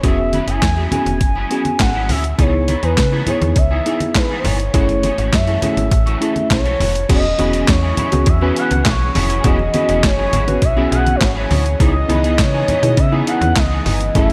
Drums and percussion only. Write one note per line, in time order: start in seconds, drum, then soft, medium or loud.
0.04 kick loud
0.04 closed hi-hat loud
0.04 muted conga soft
0.04 low conga medium
0.33 closed hi-hat medium
0.33 high conga medium
0.48 closed hi-hat soft
0.62 kick loud
0.62 snare loud
0.62 clap medium
0.62 closed hi-hat medium
0.62 muted conga soft
0.77 muted conga soft
0.92 closed hi-hat medium
0.92 high conga medium
0.92 low conga medium
1.06 closed hi-hat medium
1.06 high conga medium
1.21 kick loud
1.21 closed hi-hat medium
1.21 muted conga soft
1.35 muted conga soft
1.51 closed hi-hat medium
1.65 closed hi-hat soft
1.65 high conga medium
1.80 kick medium
1.80 snare loud
1.80 clap medium
1.80 closed hi-hat medium
1.80 muted conga soft
2.09 open hi-hat medium
2.09 high conga medium
2.09 low conga medium
2.24 closed hi-hat soft
2.39 kick loud
2.39 closed hi-hat loud
2.39 low conga medium
2.68 closed hi-hat medium
2.68 high conga medium
2.83 closed hi-hat soft
2.97 kick loud
2.97 snare loud
2.97 clap medium
2.97 closed hi-hat medium
2.97 muted conga soft
3.12 muted conga soft
3.27 closed hi-hat medium
3.27 high conga medium
3.27 low conga medium
3.42 closed hi-hat medium
3.42 high conga medium
3.56 kick loud
3.56 closed hi-hat medium
3.86 closed hi-hat medium
4.00 closed hi-hat soft
4.00 high conga medium
4.15 kick loud
4.15 snare loud
4.15 clap medium
4.15 closed hi-hat medium
4.15 muted conga soft
4.30 muted conga soft
4.44 open hi-hat medium
4.44 high conga medium
4.44 low conga medium
4.60 closed hi-hat soft
4.74 kick loud
4.74 closed hi-hat loud
4.74 muted conga soft
4.74 low conga medium
4.89 closed hi-hat soft
4.89 muted conga soft
5.03 closed hi-hat medium
5.03 high conga medium
5.18 closed hi-hat soft
5.33 kick loud
5.33 snare loud
5.33 clap medium
5.33 closed hi-hat medium
5.47 closed hi-hat soft
5.62 closed hi-hat medium
5.62 high conga medium
5.62 low conga medium
5.77 closed hi-hat medium
5.77 high conga medium
5.91 kick loud
5.91 closed hi-hat medium
6.06 closed hi-hat soft
6.06 muted conga soft
6.22 closed hi-hat medium
6.36 closed hi-hat soft
6.36 high conga medium
6.51 kick loud
6.51 snare loud
6.51 clap medium
6.51 closed hi-hat medium
6.65 closed hi-hat soft
6.65 muted conga soft
6.80 open hi-hat medium
6.80 high conga medium
6.80 low conga medium
6.95 closed hi-hat medium
7.09 kick loud
7.09 closed hi-hat loud
7.09 crash medium
7.09 low conga medium
7.24 muted conga soft
7.39 closed hi-hat medium
7.39 high conga medium
7.53 closed hi-hat soft
7.68 kick loud
7.68 snare loud
7.68 clap medium
7.68 closed hi-hat medium
7.97 closed hi-hat medium
7.97 high conga medium
7.97 low conga medium
8.12 closed hi-hat medium
8.12 high conga medium
8.26 kick loud
8.26 closed hi-hat medium
8.26 muted conga soft
8.41 muted conga soft
8.56 closed hi-hat medium
8.71 closed hi-hat medium
8.71 high conga medium
8.85 kick loud
8.85 snare loud
8.85 clap medium
8.85 closed hi-hat medium
9.15 open hi-hat medium
9.15 high conga medium
9.15 low conga medium
9.30 closed hi-hat medium
9.44 kick loud
9.44 closed hi-hat loud
9.44 muted conga soft
9.44 low conga medium
9.59 muted conga soft
9.74 closed hi-hat medium
9.74 high conga medium
9.89 closed hi-hat medium
10.04 kick loud
10.04 snare loud
10.04 clap medium
10.04 closed hi-hat medium
10.33 closed hi-hat medium
10.33 high conga medium
10.33 low conga medium
10.48 closed hi-hat medium
10.48 high conga medium
10.62 kick loud
10.62 closed hi-hat medium
10.77 muted conga soft
10.92 closed hi-hat medium
11.07 closed hi-hat medium
11.07 high conga medium
11.21 kick loud
11.21 snare loud
11.21 clap medium
11.21 closed hi-hat medium
11.21 muted conga soft
11.51 open hi-hat medium
11.51 high conga medium
11.51 low conga medium
11.66 closed hi-hat medium
11.80 kick loud
11.80 closed hi-hat loud
11.80 muted conga soft
11.80 low conga medium
12.10 closed hi-hat medium
12.10 high conga medium
12.24 closed hi-hat medium
12.39 kick loud
12.39 snare loud
12.39 clap medium
12.39 closed hi-hat medium
12.68 closed hi-hat medium
12.68 high conga medium
12.68 low conga medium
12.83 closed hi-hat medium
12.83 high conga medium
12.97 kick loud
12.97 closed hi-hat medium
13.13 muted conga soft
13.27 closed hi-hat medium
13.42 closed hi-hat soft
13.42 high conga medium
13.56 kick loud
13.56 snare loud
13.56 clap loud
13.56 closed hi-hat medium
13.86 open hi-hat medium
13.86 high conga medium
13.86 low conga medium
14.01 closed hi-hat medium
14.15 kick loud
14.15 closed hi-hat medium
14.15 muted conga soft
14.15 low conga medium
14.30 closed hi-hat soft